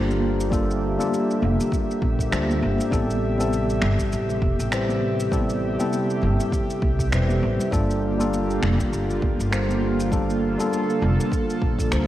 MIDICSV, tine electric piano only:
0, 0, Header, 1, 2, 480
1, 0, Start_track
1, 0, Tempo, 600000
1, 419, Time_signature, 4, 2, 24, 8
1, 9659, End_track
2, 0, Start_track
2, 0, Title_t, "Tine electric piano"
2, 0, Program_c, 0, 4
2, 0, Control_c, 0, 64, 127
2, 0, Note_on_c, 0, 55, 69
2, 0, Note_on_c, 0, 58, 62
2, 0, Note_on_c, 0, 62, 63
2, 0, Note_on_c, 0, 65, 62
2, 0, Note_on_c, 0, 69, 81
2, 0, Note_on_c, 0, 72, 75
2, 388, Note_off_c, 0, 55, 0
2, 391, Note_off_c, 0, 58, 0
2, 393, Note_off_c, 0, 62, 0
2, 396, Note_off_c, 0, 65, 0
2, 398, Note_off_c, 0, 72, 0
2, 405, Note_on_c, 0, 55, 85
2, 410, Note_on_c, 0, 58, 73
2, 414, Note_on_c, 0, 62, 76
2, 419, Note_on_c, 0, 65, 74
2, 423, Note_off_c, 0, 69, 0
2, 423, Note_on_c, 0, 69, 99
2, 756, Note_off_c, 0, 55, 0
2, 758, Note_off_c, 0, 58, 0
2, 760, Note_off_c, 0, 62, 0
2, 763, Note_off_c, 0, 65, 0
2, 765, Note_off_c, 0, 69, 0
2, 783, Note_on_c, 0, 55, 78
2, 790, Note_on_c, 0, 58, 71
2, 793, Note_on_c, 0, 62, 68
2, 795, Note_on_c, 0, 65, 69
2, 800, Note_on_c, 0, 69, 83
2, 860, Note_off_c, 0, 55, 0
2, 863, Note_off_c, 0, 58, 0
2, 865, Note_off_c, 0, 62, 0
2, 866, Note_off_c, 0, 65, 0
2, 869, Note_off_c, 0, 69, 0
2, 1843, Note_on_c, 0, 55, 68
2, 1848, Note_on_c, 0, 58, 61
2, 1854, Note_on_c, 0, 62, 64
2, 1857, Note_on_c, 0, 65, 63
2, 1861, Note_on_c, 0, 72, 73
2, 2306, Note_off_c, 0, 55, 0
2, 2309, Note_off_c, 0, 58, 0
2, 2312, Note_off_c, 0, 62, 0
2, 2313, Note_off_c, 0, 65, 0
2, 2316, Note_off_c, 0, 72, 0
2, 2325, Note_on_c, 0, 55, 86
2, 2326, Note_on_c, 0, 59, 81
2, 2333, Note_on_c, 0, 60, 76
2, 2337, Note_on_c, 0, 64, 78
2, 2343, Note_on_c, 0, 69, 97
2, 2350, Control_c, 0, 64, 0
2, 2475, Control_c, 0, 64, 127
2, 2676, Note_off_c, 0, 55, 0
2, 2676, Note_off_c, 0, 59, 0
2, 2680, Note_off_c, 0, 60, 0
2, 2681, Note_off_c, 0, 64, 0
2, 2684, Note_off_c, 0, 69, 0
2, 2705, Note_on_c, 0, 55, 74
2, 2709, Note_on_c, 0, 59, 72
2, 2714, Note_on_c, 0, 60, 68
2, 2719, Note_on_c, 0, 64, 67
2, 2723, Note_on_c, 0, 69, 88
2, 2781, Note_off_c, 0, 55, 0
2, 2783, Note_off_c, 0, 59, 0
2, 2786, Note_off_c, 0, 60, 0
2, 2788, Note_off_c, 0, 64, 0
2, 2790, Note_off_c, 0, 69, 0
2, 3770, Note_on_c, 0, 55, 69
2, 3776, Note_on_c, 0, 71, 63
2, 3779, Note_on_c, 0, 60, 63
2, 3784, Note_on_c, 0, 64, 62
2, 3790, Note_on_c, 0, 72, 75
2, 4230, Note_off_c, 0, 55, 0
2, 4233, Note_off_c, 0, 71, 0
2, 4234, Note_off_c, 0, 60, 0
2, 4237, Note_off_c, 0, 64, 0
2, 4240, Note_off_c, 0, 72, 0
2, 4249, Note_on_c, 0, 55, 84
2, 4252, Note_on_c, 0, 59, 82
2, 4257, Note_on_c, 0, 60, 79
2, 4262, Note_on_c, 0, 64, 84
2, 4267, Note_on_c, 0, 69, 95
2, 4598, Note_off_c, 0, 55, 0
2, 4599, Note_off_c, 0, 59, 0
2, 4602, Note_off_c, 0, 60, 0
2, 4604, Note_off_c, 0, 64, 0
2, 4607, Note_off_c, 0, 69, 0
2, 4624, Note_on_c, 0, 55, 70
2, 4631, Note_on_c, 0, 59, 66
2, 4636, Note_on_c, 0, 60, 71
2, 4641, Note_on_c, 0, 64, 71
2, 4645, Note_on_c, 0, 69, 83
2, 4701, Note_off_c, 0, 55, 0
2, 4704, Note_off_c, 0, 59, 0
2, 4707, Note_off_c, 0, 60, 0
2, 4709, Note_off_c, 0, 64, 0
2, 4711, Note_off_c, 0, 69, 0
2, 5687, Note_on_c, 0, 55, 67
2, 5694, Note_on_c, 0, 71, 62
2, 5696, Note_on_c, 0, 60, 59
2, 5701, Note_on_c, 0, 64, 61
2, 5707, Note_on_c, 0, 72, 76
2, 6148, Note_off_c, 0, 55, 0
2, 6152, Note_off_c, 0, 71, 0
2, 6153, Note_off_c, 0, 60, 0
2, 6155, Note_off_c, 0, 64, 0
2, 6158, Note_off_c, 0, 72, 0
2, 6166, Note_on_c, 0, 55, 89
2, 6170, Note_on_c, 0, 58, 79
2, 6176, Note_on_c, 0, 62, 83
2, 6180, Note_on_c, 0, 65, 80
2, 6184, Note_on_c, 0, 69, 96
2, 6190, Control_c, 0, 64, 0
2, 6314, Control_c, 0, 64, 127
2, 6516, Note_off_c, 0, 55, 0
2, 6518, Note_off_c, 0, 58, 0
2, 6521, Note_off_c, 0, 62, 0
2, 6523, Note_off_c, 0, 65, 0
2, 6525, Note_off_c, 0, 69, 0
2, 6542, Note_on_c, 0, 55, 73
2, 6545, Note_on_c, 0, 58, 68
2, 6550, Note_on_c, 0, 62, 72
2, 6556, Note_on_c, 0, 65, 72
2, 6562, Note_on_c, 0, 69, 85
2, 6620, Note_off_c, 0, 55, 0
2, 6621, Note_off_c, 0, 58, 0
2, 6624, Note_off_c, 0, 62, 0
2, 6627, Note_off_c, 0, 65, 0
2, 6630, Note_off_c, 0, 69, 0
2, 7609, Note_on_c, 0, 55, 67
2, 7610, Note_on_c, 0, 58, 60
2, 7617, Note_on_c, 0, 62, 61
2, 7623, Note_on_c, 0, 65, 62
2, 7626, Note_on_c, 0, 72, 74
2, 8069, Note_off_c, 0, 55, 0
2, 8070, Note_off_c, 0, 58, 0
2, 8073, Note_off_c, 0, 62, 0
2, 8076, Note_off_c, 0, 65, 0
2, 8078, Note_off_c, 0, 72, 0
2, 8087, Note_on_c, 0, 55, 83
2, 8091, Note_on_c, 0, 58, 83
2, 8095, Note_on_c, 0, 62, 80
2, 8101, Note_on_c, 0, 65, 77
2, 8105, Note_on_c, 0, 69, 90
2, 8437, Note_off_c, 0, 55, 0
2, 8439, Note_off_c, 0, 58, 0
2, 8441, Note_off_c, 0, 62, 0
2, 8444, Note_off_c, 0, 65, 0
2, 8446, Note_off_c, 0, 69, 0
2, 8467, Note_on_c, 0, 55, 77
2, 8473, Note_on_c, 0, 58, 66
2, 8477, Note_on_c, 0, 62, 70
2, 8483, Note_on_c, 0, 65, 73
2, 8485, Note_on_c, 0, 69, 84
2, 8542, Note_off_c, 0, 55, 0
2, 8545, Note_off_c, 0, 58, 0
2, 8547, Note_off_c, 0, 62, 0
2, 8550, Note_off_c, 0, 65, 0
2, 8551, Note_off_c, 0, 69, 0
2, 9527, Note_on_c, 0, 55, 69
2, 9532, Note_on_c, 0, 58, 64
2, 9535, Note_on_c, 0, 62, 66
2, 9541, Note_on_c, 0, 65, 61
2, 9545, Note_on_c, 0, 72, 77
2, 9659, Note_off_c, 0, 55, 0
2, 9659, Note_off_c, 0, 58, 0
2, 9659, Note_off_c, 0, 62, 0
2, 9659, Note_off_c, 0, 65, 0
2, 9659, Note_off_c, 0, 72, 0
2, 9659, End_track
0, 0, End_of_file